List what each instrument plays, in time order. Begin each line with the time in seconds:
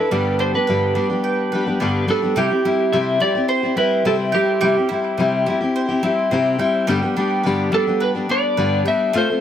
Already playing: mandolin A3 F4 A4 E5, steel-string acoustic guitar A4, electric slide guitar B4
0.00 steel-string acoustic guitar D4 E4
0.11 steel-string acoustic guitar G2 D3 G3 B3 D4 G4, mandolin G3
0.39 mandolin D4, electric slide guitar C5
0.54 steel-string acoustic guitar G3 B3 D4 G4, electric slide guitar B4
0.67 steel-string acoustic guitar G2 D3 G3 B3 D4 G4, mandolin B4
0.95 steel-string acoustic guitar G3 B3 D4 G4, mandolin D4
1.09 steel-string acoustic guitar G3 B3 D4 G4
1.24 mandolin G5
1.52 steel-string acoustic guitar G3 B3 D4 G4, mandolin B4
1.66 steel-string acoustic guitar G3 B3 D4 G4
1.80 steel-string acoustic guitar G2 D3 G3 B3 D4 G4, mandolin D4
2.07 steel-string acoustic guitar G3 B3 D4 G4, electric slide guitar A4, mandolin B4
2.22 steel-string acoustic guitar G3 B3 D4 G4
2.36 steel-string acoustic guitar C3 G3 C4 E4 G4, mandolin G3 G5, electric slide guitar G4
2.50 steel-string acoustic guitar C4 E4 G4
2.65 steel-string acoustic guitar G3 C4 E4 G4, mandolin E4
2.92 steel-string acoustic guitar C3 G3 C4 E4 G4, mandolin C5, electric slide guitar E5
3.20 steel-string acoustic guitar G3 C4 E4 G4, mandolin E4, electric slide guitar D5
3.35 steel-string acoustic guitar C4 E4 G4
3.48 mandolin C5, electric slide guitar C5
3.63 steel-string acoustic guitar C4 E4 G4
3.76 steel-string acoustic guitar G3 C4 E4 G4, mandolin E4, electric slide guitar B4
4.05 steel-string acoustic guitar C3 G3 C4 E4 G4, electric slide guitar A4, mandolin C5
4.32 steel-string acoustic guitar G3 C4, electric slide guitar G4, mandolin G5
4.36 steel-string acoustic guitar E4 G4
4.61 steel-string acoustic guitar C3 G3 C4 E4 G4, mandolin G3 G5
4.76 steel-string acoustic guitar C4 E4 G4
4.89 steel-string acoustic guitar G3 C4, mandolin E4
4.93 steel-string acoustic guitar E4 G4
5.18 steel-string acoustic guitar C3 G3 C4 E4 G4, mandolin C5
5.46 steel-string acoustic guitar G3 C4 E4 G4, mandolin E4
5.61 steel-string acoustic guitar C4 E4 G4
5.76 mandolin C5
5.89 steel-string acoustic guitar C4 E4 G4
6.03 steel-string acoustic guitar G3 C4 E4 G4, mandolin E4
6.31 steel-string acoustic guitar C3 G3 C4 E4 G4, mandolin C5
6.59 steel-string acoustic guitar G3 C4 E4 G4, mandolin G5
6.87 steel-string acoustic guitar G2 D3 G3 B3 D4 G4, mandolin G3 G5
7.02 steel-string acoustic guitar G3 B3 D4 G4
7.17 steel-string acoustic guitar G3 B3 D4 G4, mandolin D4
7.43 steel-string acoustic guitar G2 D3 G3 B3 D4 G4, mandolin B4
7.71 steel-string acoustic guitar G3 B3 D4 G4, mandolin D4, electric slide guitar A4
7.87 steel-string acoustic guitar G3 B3 D4 G4
8.00 mandolin B4, electric slide guitar B4
8.15 steel-string acoustic guitar G3 B3 D4 G4
8.29 steel-string acoustic guitar G3 B3 D4 G4, mandolin D4, electric slide guitar D5
8.57 steel-string acoustic guitar G2 D3 G3 B3 D4 G4, mandolin B4
8.85 steel-string acoustic guitar G3 B3 D4 G4, electric slide guitar E5, mandolin G5
9.13 mandolin A3 F5, steel-string acoustic guitar A3 C4 F4 A4
9.18 electric slide guitar C5
9.30 steel-string acoustic guitar C4 F4 A4